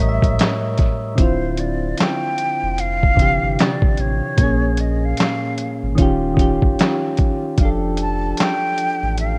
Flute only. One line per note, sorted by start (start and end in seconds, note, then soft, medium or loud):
0.00 0.75 E5 medium
1.19 1.61 C5 loud
1.60 2.01 D5 medium
1.99 2.81 G5 loud
2.80 3.61 F5 loud
3.60 4.02 D5 medium
4.00 4.82 C#5 medium
4.80 5.06 D#5 medium
5.05 5.84 F5 medium
7.60 7.69 F5 medium
8.00 8.42 A5 loud
8.40 9.19 G5 loud
9.20 9.38 F5 loud